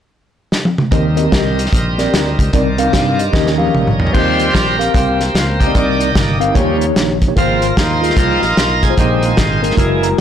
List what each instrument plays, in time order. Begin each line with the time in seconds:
0.52 snare
0.65 high tom
0.78 mid tom
0.91 fingered electric bass D#2, tine electric piano D#3 C4 G4 A#4 D#5, tonewheel organ G3 C4 D#4 A#4, kick, closed hi-hat
1.17 tine electric piano C4 F#4 A#4 D#5, closed hi-hat
1.22 tine electric piano G4
1.32 fingered electric bass C2, kick, snare, closed hi-hat
1.59 closed hi-hat
1.66 snare
1.73 fingered electric bass A#1, kick, closed hi-hat
1.98 tine electric piano C4 G4 A#4 D5, snare, closed hi-hat
2.13 fingered electric bass D2, snare, closed hi-hat
2.39 fingered electric bass C#2, kick, closed hi-hat
2.53 fingered electric bass C2, tine electric piano C3 C4 D#4 A#4 D5, tonewheel organ D#3 C4 D5, kick, closed hi-hat
2.78 tine electric piano C4 D4 A#4 F5, closed hi-hat
2.83 tine electric piano D#4
2.93 fingered electric bass G2, tine electric piano F5, kick, snare, closed hi-hat
3.19 tine electric piano G4 D#5, closed hi-hat
3.33 fingered electric bass D#2, tine electric piano D#3 C#4 G4 A#4 D#5, tonewheel organ G3 C#4 D#4, kick, snare
3.47 snare
3.58 tine electric piano C#4 G4 A#4 F5, high tom
3.67 high tom
3.75 fingered electric bass A#1, mid tom
3.87 mid tom
4.00 floor tom
4.07 floor tom
4.13 fingered electric bass D#2, tine electric piano D#3 C4 G4 A#4 D5, tonewheel organ F3 G3 C4 G4 C5, kick, crash
4.18 tine electric piano D#5
4.39 closed hi-hat
4.54 fingered electric bass A#1, tonewheel organ G4 A#4, kick, snare, closed hi-hat
4.79 tine electric piano C4 G4 A#4 F5, closed hi-hat
4.94 fingered electric bass C2, tonewheel organ A#3 C4 G4, kick, closed hi-hat
5.20 snare, closed hi-hat
5.34 fingered electric bass C#2, tonewheel organ F4, snare, closed hi-hat
5.60 tonewheel organ A#3 D#4 G4, kick, closed hi-hat
5.67 tine electric piano C4 G4 A#4 D5
5.74 fingered electric bass C2, tine electric piano C3 C4 D4 A#4 D5, tonewheel organ D#3 A#3 D5, kick, closed hi-hat
5.79 tine electric piano D#4
6.00 closed hi-hat
6.15 fingered electric bass G1, kick, snare, closed hi-hat
6.40 tine electric piano C4 D#4 A#4 F5, closed hi-hat
6.54 fingered electric bass D#2, tine electric piano D#3 A#3 D#4 G4 C#5, tonewheel organ F3 G3 C#4, kick, closed hi-hat
6.81 closed hi-hat
6.96 fingered electric bass A#1, snare, closed hi-hat
7.22 kick, closed hi-hat
7.28 tine electric piano A#3 D#4 G4 C#5
7.36 fingered electric bass G#1, tine electric piano G#2 A#3 F4 G#4 A#4, tonewheel organ F3 A#3 C4 F4, kick, closed hi-hat
7.41 tine electric piano C5
7.62 closed hi-hat
7.77 fingered electric bass D#2, tonewheel organ D#4 F4 C5, kick, snare, closed hi-hat
8.02 tine electric piano A#3 F4 G#4 A#4, closed hi-hat
8.10 snare
8.16 fingered electric bass C2, tonewheel organ F3 A#3 C4 D#4 F4 A#4, kick, closed hi-hat
8.42 fingered electric bass A#1, snare, closed hi-hat
8.57 fingered electric bass B1, snare, closed hi-hat
8.83 tonewheel organ G#4, kick, closed hi-hat
8.90 tine electric piano A#3 F4 G#4 C5
8.97 fingered electric bass A#1, tine electric piano A#2 A#3 D#4 G#4 C5, tonewheel organ D#3 G#3 C4 D#4 G4, kick, closed hi-hat
9.23 tonewheel organ G#3 C4 F4, closed hi-hat
9.37 fingered electric bass G#1, kick, snare, closed hi-hat
9.62 tine electric piano A#3 D#4 G#4 A#4, closed hi-hat
9.71 snare
9.77 fingered electric bass F#1, tonewheel organ E3 G#3, tine electric piano G#3 E4 F#4 A#4, kick, closed hi-hat
9.81 tonewheel organ A#3
10.03 tine electric piano A#5, closed hi-hat